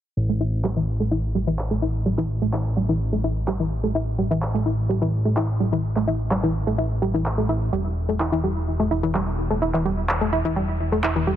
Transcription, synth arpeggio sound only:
0.29 A3
0.41 E4
0.64 G3
0.76 E3
1.00 A3
1.11 E4
1.35 G3
1.47 E3
1.71 A3
1.82 E4
2.06 G3
2.18 E3
2.42 A3
2.53 E4
2.77 G3
2.89 E3
3.13 A3
3.24 E4
3.48 G3
3.60 E3
3.84 A3
3.95 E4
4.18 G3
4.31 E3
4.54 A3
4.66 E4
4.89 G3
5.02 E3
5.25 A3
5.37 E4
5.60 G3
5.72 E3
5.96 A3
6.07 E4
6.31 G3
6.43 E3
6.67 A3
6.78 E4
7.02 G3
7.14 E3
7.38 A3
7.49 E4
7.73 G3
8.09 A3
8.20 E4
8.32 E3
8.44 G3
8.80 A3
8.91 E4
9.03 E3
9.15 G3
9.50 A3
9.62 E4
9.74 E3
9.85 G3
10.21 A3
10.33 E4
10.45 E3
10.56 G3
10.92 A3
11.04 E4
11.16 E3
11.27 G3

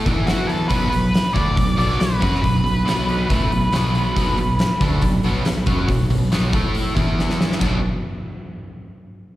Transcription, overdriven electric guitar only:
0.06 E3 B3 E4
0.69 B2 F#3 B3
0.91 B2 F#3
1.34 D3 A3 D4
1.57 B2 F#3
1.77 B2 F#3 B3
1.98 B2 F#3
2.20 F#3 C#4 F#4
2.42 B2 F#3
2.64 B2 F#3
2.85 B2 F#3 B3
3.29 A2 E3 A3
3.51 B2 F#3
3.72 B2 F#3 B3
4.16 B2 F#3 B3
4.39 B2 F#3
4.81 D3 A3 D4
5.02 B2 F#3
5.24 B2 F#3 B3
5.46 B2 F#3
5.66 F#3 C#4 F#4
5.88 B2 F#3
6.10 B2 F#3
6.32 B2 F#3 B3
6.54 A3 E4 A4
6.95 E3 B3 E4
7.60 B2 F#3 B3 D4

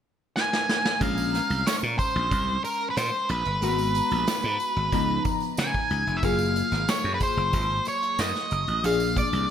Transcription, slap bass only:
1.01 A#1
1.50 C2
1.83 A#2
2.16 A#1
2.32 C2
2.97 A#2
3.29 A#1
3.46 G1
3.62 G#1
4.11 A#1
4.44 G#2
4.76 G#1
4.93 C#2
5.58 C#3
5.91 C#2
6.07 F1
6.23 F#1
6.72 G#1
7.04 F#2
7.37 F#1
7.54 G#1
8.19 F#2
8.51 F#1
8.68 A1
8.84 A#1
9.33 C2

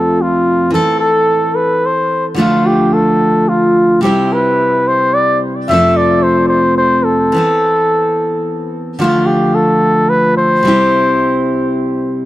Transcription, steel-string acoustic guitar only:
Already playing: F2 C3 F3 A3 C4 F4
0.70 E3 C4
0.75 A4
2.35 D3 F3 A3 D4
2.40 F4
4.01 C3 G3 C4
4.05 E4 G4
5.68 F2 C3 F3 A3 C4
5.73 A4
7.32 E3 B3
7.37 C4 A4
8.99 D3 F3 A3 D4
9.04 F4
10.63 C3 G3 C4
10.67 E4 G4

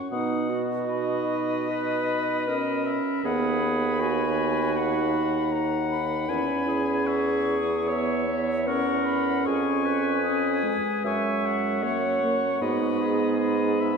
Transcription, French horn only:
0.12 B3
0.88 D#4
2.48 C#4
3.25 B3
3.63 B3
4.77 D#4
6.29 C#4
7.88 B3
8.28 B3
8.67 C#4
10.24 C#4
10.64 G#3
11.83 A#3
12.23 A#3
12.61 B3

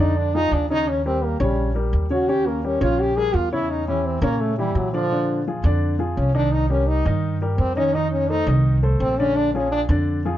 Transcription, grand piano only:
0.00 D3 D4 D5
0.35 F3 F4 G#4
0.70 C#3 C#4 C#5
1.05 G3 G4 A#4
1.40 C#3 C#4 C#5
1.75 G3 G4 A#4
2.10 C#3 C#4 C#5
2.29 C#3 C#4 C#5
2.64 G3 G4 A#4
2.81 C#3 C#4 C#5
3.17 G3 G4 A#4
3.53 C#3 C#4 C#5
3.88 E3 E4 G4
4.23 C#3 C#4 C#5
4.58 E3 E4 G4
4.94 D3 D4 D5
5.12 D3 D4 D5
5.48 F3 F4 G#4
5.65 D3 D4 D5
5.99 F3 F4 G#4
6.35 D#3 D#4 D#5
6.70 G3 G4 A#4
7.06 D#3 D#4 D#5
7.42 G3 G4 A#4
7.77 D#3 D#4 D#5
7.95 D#3 D#4 D#5
8.30 A3 A4 C5
8.48 D#3 D#4 D#5
8.83 A3 A4 C5
9.19 D3 D4 D5
9.55 F3 F4 G#4
9.90 D3 D4 D5
10.25 F3 F4 G#4

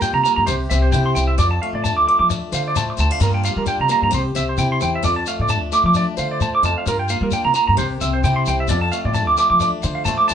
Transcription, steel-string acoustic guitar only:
Already playing: G2 A#3 F4
0.03 D4
0.26 A#3
0.47 C3 G4
0.71 C4
0.94 E4
1.16 C4
1.38 F2 A4
1.63 A3
1.85 D4
2.08 A3
2.31 D4
2.52 C5
2.76 A3
2.97 C4
3.11 D4
3.20 G2 G3 A#3 D4 F4
3.43 A#3
3.66 D4
3.89 A#3
4.11 G4, muted steel-string acoustic guitar stroke
4.35 C4
4.58 E4
4.81 C4
5.03 F2 A4
5.27 A3
5.49 D4
5.72 A3
5.95 D4
6.17 C5
6.63 F2
6.87 F4, muted steel-string acoustic guitar stroke
7.10 A#3
7.32 D4
7.54 A#3
7.77 C3 G4
8.02 C4
8.25 E4
8.49 C4
8.69 F2 A4
8.93 A3
9.16 D4
9.38 A3
9.62 D4
9.84 C5
10.08 A3
10.29 D4

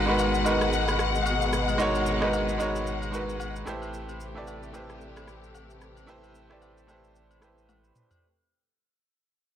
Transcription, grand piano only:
Already playing: G#3 D#4 F#4 A#4 B4
0.06 G#3 D#4 F#4 A#4 B4
0.44 G#3 D#4 F#4 A#4 B4
1.78 G#3 D#4 F#4 A#4 C#5
2.20 G#3 D#4 F#4 A#4 B4
2.58 G#3 D#4 F#4 A#4 C#5
3.12 G#3 D#4 F#4 A#4 B4
3.65 A3 E4 G4 B4 C5
4.34 A3 E4 G4 B4 D5
4.73 A3 E4 G4 B4 C5
6.06 A3 E4 G4 B4 C5
6.49 A3 E4 G4 B4 D5
6.87 A3 E4 G4 B4 C5
7.40 A3 E4 G4 B4 C5

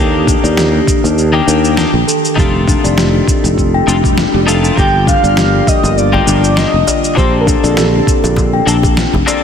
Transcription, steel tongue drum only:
0.27 D4
0.44 D5
0.58 G4
1.34 G5
1.48 D4
2.07 A4
2.38 G4
2.68 D4
2.84 D5
2.98 G4
3.74 G5
3.88 D4
4.48 A4
4.78 G4
5.07 D4
5.24 D5
5.37 G4
6.13 G5
6.27 D4
6.87 D5
7.17 G4
7.47 D4
7.63 D5
7.77 G4
8.53 G5
8.67 D4
9.27 D5

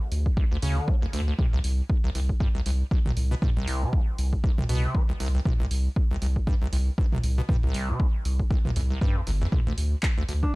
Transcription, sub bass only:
0.12 D2
0.62 D2
1.13 D2
1.53 C2
1.64 C2
2.15 C2
2.66 C2
3.17 C2
3.57 C2
3.67 C2
4.18 C2
4.69 C2
5.20 C2
5.60 C2
5.71 C2
6.22 C2
6.73 C2
7.23 C2
7.63 C2
7.74 C2
8.25 C2
8.76 C2
9.27 G1
9.67 D2
9.78 D2
10.29 D2

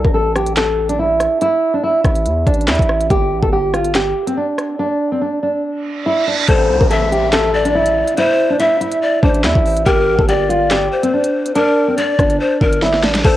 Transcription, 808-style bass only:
0.05 A1
2.05 A1
2.26 E2
2.47 A1
2.68 E2
2.79 A1
3.10 G1
3.31 A1
3.43 G1
6.48 A1
6.69 C2
6.81 A1
9.23 A1
9.44 E2
9.55 A1
9.86 G1
10.07 A1
10.19 G1
12.19 G1
12.61 G1
13.03 A1
13.24 A1

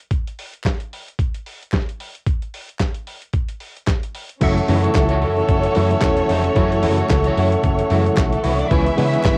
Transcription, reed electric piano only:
4.41 C#3 E3 F#3 A3 E4
4.68 C#3 E3 F#3 A3 D#4
4.75 E4
5.75 C#3 E3 F#3 A3 E4
6.55 C#3 E3 F#3 A3 E4
6.83 C#3 E3 F#3 A3 E4
7.90 C#3 E3 F#3 G#3 E4
7.98 A3
8.71 C#3 E3 G#3 B3 E4
8.97 C#3 E3 G#3 B3 D4
9.05 E4

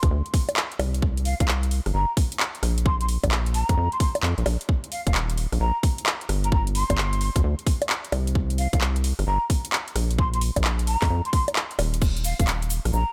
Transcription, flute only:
1.25 F5
1.40 F5
1.94 A#5
2.86 C6
3.01 C6
3.54 A#5
3.92 C6
4.00 C6
4.92 F5
5.07 F5
5.60 A#5
6.44 A#5
6.52 A#5
6.75 C6
8.58 F5
8.73 F5
9.27 A#5
10.18 C6
10.33 C6
10.87 A#5
11.25 C6
11.33 C6
12.25 F5
12.39 F5
12.93 A#5

